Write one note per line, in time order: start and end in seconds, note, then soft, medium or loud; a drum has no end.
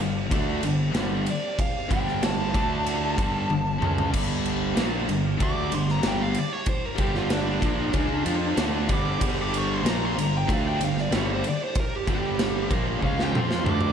0.00 0.30 G1 medium
0.00 0.25 G2 medium
0.00 0.26 D3 medium
0.00 2.52 G4 medium
0.00 13.92 A5 medium
0.31 0.62 D2 loud
0.31 0.61 D3 loud
0.31 0.63 A3 medium
0.31 0.63 D4 loud
0.31 kick loud
0.31 ride loud
0.62 0.93 G1 medium
0.62 0.89 G2 medium
0.62 0.89 D3 medium
0.62 2.54 C4 medium
0.62 ride medium
0.93 1.25 G1 medium
0.93 1.26 G2 medium
0.93 1.26 D3 loud
0.93 1.27 G3 loud
0.93 snare loud
0.93 ride loud
1.26 ride medium
1.31 1.60 D5 loud
1.59 1.91 F5 medium
1.59 kick loud
1.59 ride loud
1.89 2.51 G1 medium
1.89 2.53 G2 medium
1.89 2.52 D3 medium
1.89 2.53 G3 loud
1.89 2.23 G5 loud
1.89 kick loud
1.89 ride medium
2.08 snare soft
2.23 4.11 A5 medium
2.23 snare loud
2.23 ride loud
2.54 3.15 D2 medium
2.54 3.15 D3 loud
2.54 3.16 A3 loud
2.54 3.18 D4 loud
2.54 3.19 D5 medium
2.54 kick loud
2.54 ride medium
2.86 ride loud
3.15 3.48 G1 loud
3.15 3.47 G2 loud
3.15 3.47 D3 medium
3.15 3.49 G3 loud
3.15 13.92 G4 medium
3.15 kick loud
3.15 ride medium
3.48 3.80 G1 medium
3.48 3.75 G2 medium
3.48 3.75 D3 medium
3.48 high tom medium
3.78 4.12 C#2 loud
3.78 4.10 C#3 medium
3.78 4.10 G#3 medium
3.78 4.12 C#4 loud
3.78 mid tom loud
3.83 4.14 C#4 loud
3.98 floor tom medium
4.10 4.73 G1 medium
4.10 4.75 G2 loud
4.10 4.73 D3 loud
4.10 4.74 G3 loud
4.10 kick loud
4.10 crash loud
4.46 ride medium
4.73 5.07 A#1 loud
4.73 5.05 A#2 medium
4.73 5.07 F3 medium
4.73 5.07 A#3 medium
4.73 snare loud
4.73 ride loud
5.05 5.33 G2 medium
5.05 5.33 D3 medium
5.09 5.39 G1 medium
5.09 ride medium
5.38 5.70 D2 loud
5.38 5.70 D3 loud
5.38 5.71 A3 loud
5.38 5.71 D4 medium
5.38 kick loud
5.38 ride medium
5.43 5.73 D6 loud
5.71 6.02 G1 medium
5.71 5.97 G2 medium
5.71 5.98 D3 medium
5.71 ride medium
5.75 5.91 C6 medium
5.88 6.08 A#5 medium
5.88 snare soft
6.01 6.34 G1 medium
6.01 6.34 G2 medium
6.01 6.34 D3 medium
6.01 6.34 G3 medium
6.01 snare loud
6.01 ride loud
6.08 6.22 G5 medium
6.22 6.38 F5 medium
6.35 6.53 D5 medium
6.35 ride medium
6.53 6.68 C#5 medium
6.66 6.84 C5 loud
6.66 kick loud
6.66 ride loud
6.86 7.00 A#4 medium
6.96 7.59 G1 medium
6.96 7.60 G2 medium
6.96 7.60 D3 medium
6.96 7.61 G3 medium
6.96 kick loud
6.96 ride medium
7.00 7.63 G3 loud
7.00 7.16 G4 loud
7.15 7.33 F4 loud
7.15 snare soft
7.30 8.56 D4 loud
7.30 snare loud
7.30 ride loud
7.61 7.92 A#1 medium
7.61 7.92 A#2 loud
7.61 7.92 F3 loud
7.61 7.93 A#3 loud
7.61 kick loud
7.61 ride medium
7.93 8.24 C#2 loud
7.93 8.24 C#3 medium
7.93 8.25 G#3 loud
7.93 8.25 C#4 loud
7.93 kick loud
7.93 ride loud
8.25 8.56 F2 loud
8.25 8.56 F3 medium
8.25 8.56 C4 loud
8.25 8.57 F4 loud
8.25 13.92 C5 medium
8.25 ride medium
8.56 8.88 D2 loud
8.56 8.87 D3 medium
8.56 8.88 A3 loud
8.56 8.89 D4 loud
8.56 snare loud
8.56 ride loud
8.88 9.19 G1 loud
8.88 9.18 G2 medium
8.88 9.19 D3 loud
8.88 9.19 G3 loud
8.88 kick loud
8.88 ride medium
8.93 9.23 D6 loud
9.19 9.81 G1 medium
9.19 9.83 G2 loud
9.19 9.84 D3 loud
9.19 9.84 G3 loud
9.19 kick loud
9.19 ride loud
9.42 9.55 D6 medium
9.54 9.74 C#6 loud
9.54 ride medium
9.74 9.89 C6 medium
9.83 10.14 A#1 loud
9.83 10.16 A#2 medium
9.83 10.16 F3 medium
9.83 10.16 A#3 loud
9.83 snare loud
9.83 ride loud
9.89 10.05 A#5 loud
10.05 10.20 C6 medium
10.16 10.46 G1 medium
10.16 10.42 G2 medium
10.16 10.42 D3 medium
10.16 ride medium
10.20 10.34 A#5 medium
10.37 10.53 G5 loud
10.47 10.78 D2 loud
10.47 10.79 D3 loud
10.47 10.80 A3 loud
10.47 10.80 D4 loud
10.47 kick loud
10.47 ride loud
10.53 10.66 F5 loud
10.68 10.84 G5 medium
10.80 11.10 G1 medium
10.80 11.06 G2 medium
10.80 11.06 D3 medium
10.80 10.98 F5 loud
10.80 ride medium
10.97 11.14 D5 loud
10.97 snare soft
11.12 11.42 G1 loud
11.12 11.43 G2 medium
11.12 11.43 D3 medium
11.12 11.43 G3 loud
11.12 snare loud
11.12 ride loud
11.17 11.30 C#5 loud
11.34 11.47 C5 loud
11.44 ride medium
11.49 11.62 D5 medium
11.64 11.77 C5 loud
11.75 kick loud
11.75 ride medium
11.80 11.96 A#4 loud
11.96 12.09 G4 medium
12.07 12.67 G1 loud
12.07 12.70 G2 medium
12.07 12.71 D3 medium
12.07 12.70 G3 loud
12.07 kick loud
12.07 ride medium
12.12 12.71 G4 medium
12.39 snare loud
12.39 ride loud
12.70 13.00 A#1 medium
12.70 13.01 A#2 medium
12.70 13.02 F3 loud
12.70 13.02 A#3 loud
12.70 kick loud
12.70 ride medium
13.02 13.32 C#2 loud
13.02 13.32 C#3 loud
13.02 13.32 G#3 loud
13.02 13.33 C#4 loud
13.02 kick medium
13.06 13.23 F5 loud
13.19 13.36 G5 medium
13.19 snare medium
13.32 13.63 F2 loud
13.32 13.64 F3 loud
13.32 13.64 C4 medium
13.32 13.65 F4 loud
13.32 mid tom medium
13.39 13.67 C6 medium
13.51 snare medium
13.64 13.92 D2 loud
13.64 13.92 D3 loud
13.64 13.92 A3 medium
13.64 13.92 D4 medium
13.64 mid tom loud
13.71 13.92 D6 medium
13.81 mid tom loud